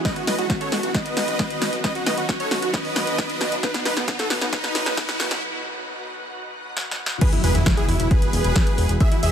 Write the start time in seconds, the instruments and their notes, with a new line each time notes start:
Already playing: riser
0.05 supersaw synth B4 D#5, digital synth lead D#5, kick, snare, closed hi-hat
0.16 supersaw synth F#4, digital synth lead F#4, closed hi-hat
0.27 analog synth bass B1, supersaw synth B4 D#5, digital synth lead D#5, snare, open hi-hat
0.38 analog synth bass B1, supersaw synth F#4, digital synth lead F#4, closed hi-hat
0.50 supersaw synth F#4, digital synth lead F#4, kick, snare, closed hi-hat
0.61 supersaw synth A4 C#5, digital synth lead C#5, closed hi-hat
0.72 analog synth bass B1, supersaw synth F#4, digital synth lead F#4, snare, open hi-hat
0.83 analog synth bass B1, digital synth lead F#4, supersaw synth F#4, closed hi-hat
0.94 supersaw synth B4 D#5, digital synth lead D#5, kick, snare, closed hi-hat
1.06 closed hi-hat
1.17 analog synth bass B1, snare, open hi-hat
1.28 analog synth bass B1, closed hi-hat
1.39 kick, snare, closed hi-hat
1.50 closed hi-hat
1.62 analog synth bass B1, snare, open hi-hat
1.73 analog synth bass B1, closed hi-hat
1.84 supersaw synth B4 D#5, digital synth lead D#5, kick, snare, closed hi-hat
1.95 digital synth lead F#4, supersaw synth F#4, closed hi-hat
2.06 analog synth bass B1, supersaw synth B4 D#5, digital synth lead D#5, snare, open hi-hat
2.18 analog synth bass B1, digital synth lead F#4, supersaw synth F#4, closed hi-hat
2.29 digital synth lead F#4, supersaw synth F#4, kick, snare, closed hi-hat
2.40 supersaw synth A4 C#5, digital synth lead C#5, closed hi-hat
2.51 analog synth bass B1, digital synth lead F#4, supersaw synth F#4, snare, open hi-hat
2.62 analog synth bass B1, digital synth lead F#4, supersaw synth F#4, closed hi-hat
2.74 supersaw synth B4 D#5, digital synth lead D#5, kick, snare, closed hi-hat
2.85 open hi-hat
2.96 analog synth bass B1, snare, open hi-hat
3.07 analog synth bass B1, closed hi-hat
3.18 kick, snare, closed hi-hat
3.30 closed hi-hat
3.41 analog synth bass B1, snare, open hi-hat
3.52 analog synth bass B1, closed hi-hat
3.63 supersaw synth D#4 B4, digital synth lead B4, kick, snare, closed hi-hat
3.74 digital synth lead B3, supersaw synth B3, snare, closed hi-hat
3.85 analog synth bass B1, supersaw synth D#4 B4, digital synth lead B4, snare, open hi-hat
3.97 analog synth bass B1, supersaw synth B3, digital synth lead B3, snare, closed hi-hat
4.08 supersaw synth B3, kick, snare, closed hi-hat
4.19 supersaw synth F#4 A4, digital synth lead A4, snare, closed hi-hat
4.30 analog synth bass B1, digital synth lead B3, supersaw synth B3, snare, open hi-hat
4.41 analog synth bass B1, supersaw synth B3, digital synth lead B3, snare, closed hi-hat
4.53 supersaw synth D#4 B4, digital synth lead B4, kick, snare, closed hi-hat
4.64 snare, closed hi-hat
4.75 analog synth bass B1, snare, open hi-hat
4.86 analog synth bass B1, snare, closed hi-hat
4.97 kick, snare, closed hi-hat
5.09 snare, closed hi-hat
5.20 analog synth bass B1, snare, open hi-hat
5.31 analog synth bass B1, snare, closed hi-hat
6.77 snare
6.91 snare
7.06 snare
7.21 supersaw synth G#4 B4, digital synth lead B4, kick, closed hi-hat, crash, impact
7.33 supersaw synth E4, digital synth lead E4, closed hi-hat
7.44 analog synth bass E1, supersaw synth G#4 B4, digital synth lead B4, open hi-hat
7.55 analog synth bass E1, supersaw synth E4, digital synth lead E4, closed hi-hat
7.66 supersaw synth E4, digital synth lead E4, kick, snare, closed hi-hat
7.77 supersaw synth E4 G#4, digital synth lead G#4, closed hi-hat
7.88 analog synth bass E1, supersaw synth E4, digital synth lead E4, open hi-hat
8.00 analog synth bass E1, supersaw synth E4, digital synth lead E4, closed hi-hat
8.11 supersaw synth G#4 B4, digital synth lead B4, kick, closed hi-hat
8.22 closed hi-hat
8.33 analog synth bass E1, open hi-hat
8.44 analog synth bass E1, closed hi-hat
8.56 kick, snare, closed hi-hat
8.67 closed hi-hat
8.78 analog synth bass E1, open hi-hat
8.89 analog synth bass E1, closed hi-hat
9.00 supersaw synth G#4 E5, digital synth lead E5, kick, closed hi-hat
9.12 digital synth lead E4, supersaw synth E4, closed hi-hat
9.23 analog synth bass E1, supersaw synth G#4 E5, digital synth lead E5, open hi-hat